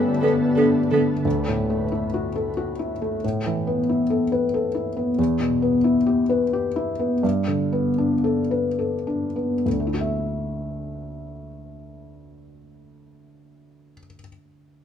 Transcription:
Already playing: felt piano G2 B3 C#4, ambient pad D3 A3 B4
0.21 felt piano B3, cello B3, viola A4
0.55 cello B3, felt piano D4, viola A4
0.90 felt piano D3, cello B3, viola A4
1.25 felt piano D2
1.48 felt piano A2
1.70 felt piano A3
1.92 felt piano E4
2.14 felt piano F#4
2.36 felt piano A4
2.57 felt piano F#4
2.79 felt piano E4
3.02 felt piano A3
3.24 felt piano A2
3.46 felt piano E3
3.67 felt piano B3
3.89 felt piano E4
4.10 felt piano A4
4.32 felt piano B4
4.54 felt piano A4
4.75 felt piano E4
4.97 felt piano B3
5.19 felt piano E2
5.40 felt piano B2
5.62 felt piano B3
5.84 felt piano E4
6.06 felt piano G4
6.29 felt piano B4
6.53 felt piano G4
6.76 felt piano E4
6.99 felt piano B3
7.23 felt piano G2
7.47 felt piano D3
7.72 felt piano B3
7.98 felt piano D4
8.24 felt piano A4
8.51 felt piano B4
8.79 felt piano A4
9.07 felt piano D4
9.36 felt piano B3
9.66 felt piano D2
9.73 felt piano D3
9.80 felt piano A3
9.87 felt piano E4
9.94 felt piano F#4
10.01 felt piano E5

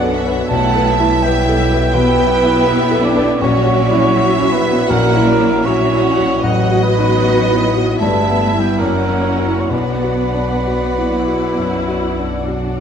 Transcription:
Already playing: double bass section B1, grand piano F#2 D4 A4 B4, cello section F#3, viola section B3 D4, violin section F#4 D5 F#5, cor anglais F#5
0.03 grand piano A4
0.15 violin section E5
0.27 grand piano B4
0.49 double bass section B1, grand piano B1, cello section A3, viola section B3 E4, violin section G4 E5 F#5, cor anglais A5
0.76 grand piano B4
0.87 violin section E5
1.00 grand piano E4
1.21 cello section G3, viola section B3 E4, violin section G4 E5, cor anglais G5
1.25 grand piano B4
1.49 grand piano A4
1.72 grand piano B4
1.92 grand piano B2, cello section B3, viola section B3 E4, violin section G4 E5 G5, cor anglais B4
2.19 grand piano B4
2.43 grand piano E4
2.66 grand piano B4, violin section E5
2.91 grand piano A4
3.01 cello section D4, violin section B4, cor anglais D5
3.16 grand piano B4
3.39 double bass section A#1, grand piano A#1, viola section F#3 C#4, cello section C#4, violin section F#4 C#5 E5, cor anglais C#5
3.66 grand piano F#4
3.76 violin section D5
3.91 grand piano E4
4.15 grand piano F#4, violin section E5
4.40 grand piano E4
4.52 cello section B3, cor anglais B4
4.66 grand piano F#4
4.88 grand piano A#1, viola section F#3 C#4, cello section A#3, violin section F#4 E5 F#5, cor anglais A#4
5.16 grand piano E4
5.26 violin section D5
5.41 grand piano F#3
5.63 viola section F#3 C#4, cello section C#4, violin section F#4 E5, grand piano F#4, cor anglais C#5
5.92 grand piano E4
5.99 violin section F#5
6.17 grand piano F#4
6.41 double bass section A1, grand piano A1, viola section F#3 F#4, cello section F#3, violin section B4 D#5, cor anglais F#5
6.71 grand piano F#4
6.83 cello section B3, cor anglais B4
6.98 grand piano D#4
7.24 grand piano F#4
7.51 grand piano E4
7.77 grand piano F#4
7.99 double bass section G1, grand piano G2, cello section A3, viola section B3 E4, violin section B4 E5, cor anglais A5
8.28 grand piano B3
8.53 grand piano E4
8.60 cello section G3, cor anglais G5
8.78 double bass section F#1, grand piano F#2, cello section A#3, viola section C#4 E4, violin section F#4 D5 F#5, cor anglais A#4
9.08 grand piano C#4
9.23 violin section C#5
9.38 grand piano E4 F#4
9.60 cor anglais C#5
9.70 grand piano B1, double bass section B1, viola section B3 D4, cello section B3, violin section F#4 D5 F#5, cor anglais B4
10.04 grand piano F#4
10.34 grand piano D4
10.67 viola section B3, grand piano F#4
10.98 grand piano E4
11.15 viola section E4
11.28 grand piano F#4
11.58 grand piano F#2
11.88 grand piano F#4
12.17 grand piano D4
12.47 viola section D4, grand piano F#4

